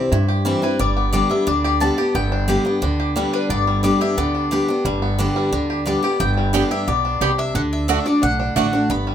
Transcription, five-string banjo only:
0.00 0.45 G3 medium
0.00 0.42 C4 medium
0.00 0.28 G4 medium
0.12 0.59 E4 medium
0.28 1.64 G4 medium
0.45 0.79 G3 medium
0.63 0.80 E4 medium
0.80 1.30 G3 medium
0.97 1.81 B3 medium
1.14 1.47 D4 medium
1.31 2.71 G3 medium
1.47 2.32 D4 medium
1.64 1.98 G4 medium
1.81 2.15 B3 medium
1.98 2.48 G4 medium
2.15 2.65 B3 medium
2.32 2.82 D4 medium
2.49 2.99 G4 medium
2.66 3.49 B3 medium
2.83 3.33 D4 medium
3.00 4.01 G4 medium
3.16 3.67 G3 medium
3.34 3.83 D4 medium
3.50 4.17 B3 medium
3.67 4.85 G3 medium
3.84 4.34 D4 medium
4.01 4.51 G4 medium
4.18 5.02 B3 medium
4.35 4.68 D4 medium
4.52 5.70 G4 medium
4.69 5.19 D4 medium
4.85 5.36 G3 medium
5.02 5.86 B3 medium
5.19 5.52 D4 medium
5.36 5.83 G3 medium
5.53 6.54 D4 medium
5.70 6.03 G4 medium
5.87 6.19 B3 medium
6.04 6.51 G4 medium
6.20 6.68 B3 medium
6.37 6.84 G3 medium
6.54 7.04 D4 medium
6.71 7.18 G4 medium
6.88 7.35 B3 medium
7.05 7.38 D4 medium
7.22 7.55 G4 medium
7.38 7.55 D4 medium
7.55 7.89 D4 medium
7.89 8.04 D4 medium
8.06 8.21 D4 medium
8.22 8.38 D4 medium
8.40 8.72 D4 medium
8.56 8.90 A3 medium
8.73 8.90 D4 medium
8.90 9.15 B3 medium
9.07 9.15 G3 medium

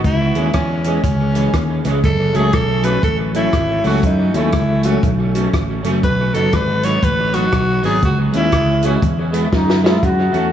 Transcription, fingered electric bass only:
0.05 0.31 C#2 medium
0.36 0.52 D#2 medium
0.55 0.97 E2 loud
1.04 1.47 C#2 medium
1.53 1.80 D#2 medium
1.85 2.01 C#2 loud
2.04 2.30 F#1 loud
2.35 2.54 C#2 medium
2.54 2.96 B1 loud
3.03 3.46 A1 medium
3.53 3.80 G#1 medium
3.84 4.01 C#2 medium
4.03 4.30 F#2 loud
4.34 4.51 D#2 medium
4.53 4.96 C#2 loud
5.03 5.46 B1 loud
5.54 5.84 A1 medium
5.84 6.01 F#1 medium
6.04 6.30 B1 loud
6.34 6.50 F#1 medium
6.53 6.96 G#1 loud
7.03 7.45 A1 loud
7.53 7.79 B1 medium
7.83 8.00 G#1 medium
8.03 8.29 C#2 loud
8.34 8.50 D#2 medium
8.53 8.95 C#2 medium
9.03 9.45 E2 loud
9.53 9.95 F#2 loud
10.03 10.29 F#2 loud
10.33 10.50 E2 medium

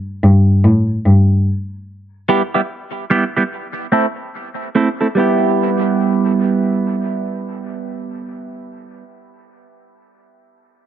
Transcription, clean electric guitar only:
2.29 2.41 G3 medium
2.29 2.41 B3 medium
2.29 2.42 E4 medium
2.29 2.42 G4 medium
2.54 2.61 G3 medium
2.54 2.60 B3 medium
2.54 2.60 E4 medium
2.54 2.60 G4 medium
3.10 3.23 G3 medium
3.10 3.23 B3 medium
3.10 3.23 E4 medium
3.10 3.23 G4 medium
3.37 3.43 G3 soft
3.37 3.43 B3 medium
3.37 3.42 E4 medium
3.37 3.42 G4 medium
3.92 4.05 A3 medium
3.92 4.05 C4 medium
3.92 4.06 E4 medium
3.92 4.06 A4 medium
4.75 4.88 A3 medium
4.75 4.88 C4 medium
4.75 4.88 E4 medium
4.75 4.88 A4 medium
5.01 5.07 A3 medium
5.01 5.07 C4 medium
5.01 5.07 E4 medium
5.01 5.06 A4 medium
5.15 9.02 G3 medium
5.15 9.04 B3 medium
5.15 9.05 E4 medium
5.20 9.06 G4 medium

